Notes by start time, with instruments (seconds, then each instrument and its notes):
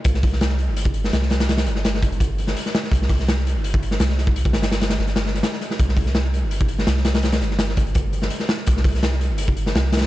0.04 sub bass C2, kick, closed hi-hat
0.14 snare
0.23 kick, open hi-hat
0.32 snare
0.41 snare, closed hi-hat
0.49 snare
0.59 closed hi-hat
0.68 sub bass G1
0.76 closed hi-hat
0.85 kick
0.94 closed hi-hat
1.04 snare
1.13 sub bass C2, snare, closed hi-hat
1.22 snare
1.30 snare, closed hi-hat
1.40 snare, closed hi-hat
1.49 snare, closed hi-hat
1.57 snare, closed hi-hat
1.66 sub bass G1, snare, closed hi-hat
1.76 snare
1.85 snare, closed hi-hat
1.94 snare
2.02 kick, closed hi-hat
2.11 sub bass G1, closed hi-hat
2.20 kick, closed hi-hat
2.38 closed hi-hat
2.47 snare
2.56 closed hi-hat
2.66 snare
2.75 snare, closed hi-hat
2.83 snare
2.91 sub bass C2, kick, closed hi-hat
3.02 snare
3.09 kick, open hi-hat
3.19 snare
3.28 snare, closed hi-hat
3.38 snare
3.47 closed hi-hat
3.55 sub bass G1
3.64 closed hi-hat
3.74 kick
3.83 closed hi-hat
3.91 snare
4.00 sub bass C2, snare, closed hi-hat
4.09 snare
4.18 snare, closed hi-hat
4.27 kick
4.36 closed hi-hat
4.45 kick
4.53 sub bass G1, snare, closed hi-hat
4.62 snare, closed hi-hat
4.72 snare, closed hi-hat
4.81 snare, closed hi-hat
4.90 snare, closed hi-hat
4.99 sub bass G1, snare
5.07 snare, closed hi-hat
5.16 snare, closed hi-hat
5.26 snare
5.35 snare, closed hi-hat
5.43 snare, closed hi-hat
5.52 snare
5.61 snare, closed hi-hat
5.71 snare
5.79 sub bass C2, kick, closed hi-hat
5.88 snare
5.97 kick, open hi-hat
6.06 snare
6.15 snare, closed hi-hat
6.24 snare
6.34 closed hi-hat
6.42 sub bass G1
6.51 closed hi-hat
6.61 kick
6.68 closed hi-hat
6.79 snare
6.87 sub bass C2, snare, closed hi-hat
6.97 snare
7.05 snare, closed hi-hat
7.15 snare, closed hi-hat
7.23 snare, closed hi-hat
7.32 snare, closed hi-hat
7.41 sub bass G1, snare, closed hi-hat
7.51 snare
7.59 snare, closed hi-hat
7.69 snare
7.77 kick, closed hi-hat
7.86 sub bass G1, closed hi-hat
7.95 kick, closed hi-hat
8.13 closed hi-hat
8.22 snare
8.30 closed hi-hat
8.40 snare
8.49 snare, closed hi-hat
8.57 snare
8.66 sub bass C2, kick, closed hi-hat
8.77 snare
8.84 kick, open hi-hat
8.95 snare
9.03 snare, closed hi-hat
9.12 snare
9.21 closed hi-hat
9.30 sub bass G1
9.38 closed hi-hat
9.48 kick
9.57 closed hi-hat
9.66 snare
9.74 sub bass C2, snare, closed hi-hat
9.84 snare
9.92 snare, closed hi-hat
9.97 snare, closed hi-hat
10.01 snare, closed hi-hat